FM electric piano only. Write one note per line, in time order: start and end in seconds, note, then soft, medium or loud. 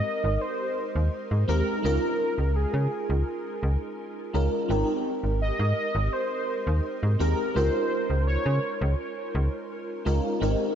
0.00 1.44 G#3 medium
0.00 1.44 C4 medium
0.00 1.44 D#4 medium
0.00 1.45 G4 medium
0.00 1.45 A#4 medium
1.48 1.80 G#3 medium
1.48 1.80 C4 medium
1.48 1.80 D#4 medium
1.48 1.80 G4 medium
1.48 1.80 A#4 medium
1.83 4.29 G#3 medium
1.83 4.30 C#4 medium
1.83 4.30 D#4 medium
1.83 4.30 F4 medium
1.83 4.31 A#4 medium
4.33 4.65 G#3 medium
4.33 4.66 C#4 medium
4.33 4.66 D#4 medium
4.33 4.66 F4 medium
4.33 4.66 A#4 medium
4.68 7.15 G#3 medium
4.68 7.15 C4 medium
4.68 7.16 D#4 medium
4.68 7.16 G4 medium
4.68 7.16 A#4 medium
7.19 7.51 G#3 medium
7.19 7.51 C4 medium
7.19 7.51 D#4 medium
7.19 7.51 G4 medium
7.19 7.52 A#4 medium
7.54 10.01 G#3 medium
7.54 10.01 C#4 medium
7.54 10.01 D#4 medium
7.54 10.02 F4 medium
7.54 10.02 A#4 medium
10.05 10.37 G#3 medium
10.05 10.37 C#4 medium
10.05 10.37 D#4 medium
10.05 10.37 F4 medium
10.05 10.38 A#4 medium
10.40 10.75 G#3 medium
10.40 10.75 C4 medium
10.40 10.75 D#4 medium
10.40 10.75 G4 medium
10.40 10.75 A#4 medium